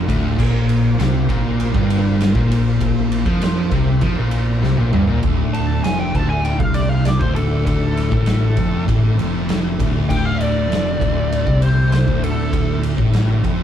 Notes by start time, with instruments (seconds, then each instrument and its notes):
Already playing: tonewheel organ D3 A3 F4
0.07 fingered electric bass D1, distorted electric guitar D2, kick, ride
0.38 fingered electric bass A#1, distorted electric guitar A#2, tonewheel organ A#3 C5, kick, crash
0.69 ride
0.98 fingered electric bass C2, distorted electric guitar C3, snare, ride
1.29 fingered electric bass A#1, distorted electric guitar A#2, kick, ride
1.60 ride
1.72 fingered electric bass G1, distorted electric guitar G2, kick
1.90 ride
2.21 snare, ride
2.34 fingered electric bass A#1, distorted electric guitar A#2, kick
2.52 ride
2.81 tonewheel organ E4, kick, ride
3.12 ride
3.25 fingered electric bass F2, distorted electric guitar F3, kick
3.42 snare, ride
3.71 fingered electric bass C2, distorted electric guitar C3, kick, ride
4.01 fingered electric bass F2, distorted electric guitar F3, kick, ride
4.16 fingered electric bass A#1, distorted electric guitar A#2
4.31 ride
4.62 fingered electric bass C2, distorted electric guitar C3, snare
4.77 fingered electric bass A#1, distorted electric guitar A#2, high tom
4.93 fingered electric bass G1, distorted electric guitar G2, mid tom
5.07 fingered electric bass A#1, distorted electric guitar A#2, floor tom
5.22 fingered electric bass D1, distorted electric guitar D2, tonewheel organ D3 A3 E4, kick, ride
5.54 lead electric guitar A5, ride
5.84 fingered electric bass F1, distorted electric guitar F2, lead electric guitar G#5, snare, ride
6.00 lead electric guitar G5
6.14 fingered electric bass D1, distorted electric guitar D2, lead electric guitar A5, kick, ride
6.30 lead electric guitar G#5
6.44 lead electric guitar G5, ride
6.59 fingered electric bass C2, distorted electric guitar C3, lead electric guitar F5, kick
6.74 lead electric guitar D5, ride
6.89 lead electric guitar F5
7.05 lead electric guitar D5, snare, ride
7.19 fingered electric bass D1, distorted electric guitar D2, lead electric guitar C5, kick
7.35 lead electric guitar A4, ride
7.65 lead electric guitar A4, kick, ride
7.97 snare, ride
8.10 fingered electric bass A1, distorted electric guitar A2, kick
8.26 snare, ride
8.57 fingered electric bass F1, distorted electric guitar F2, kick, ride
8.87 fingered electric bass A1, distorted electric guitar A2, kick, ride
9.17 fingered electric bass F1, distorted electric guitar F2, ride
9.49 snare, ride
9.79 fingered electric bass D1, distorted electric guitar D2, kick, ride
10.08 fingered electric bass D1, distorted electric guitar D2, lead electric guitar G5, kick, crash
10.25 lead electric guitar F5
10.41 lead electric guitar D5, ride
10.68 fingered electric bass F1, distorted electric guitar F2, ride
10.73 snare
10.98 fingered electric bass D1, distorted electric guitar D2, kick, ride
11.32 ride
11.46 fingered electric bass C2, distorted electric guitar C3, kick
11.62 lead electric guitar C5, ride
11.92 lead electric guitar C5, snare, ride
12.07 fingered electric bass D1, distorted electric guitar D2, kick
12.24 lead electric guitar A4, ride
12.53 kick, ride
12.83 ride
12.97 fingered electric bass A1, distorted electric guitar A2, kick
13.13 snare, ride
13.43 distorted electric guitar F2, kick, ride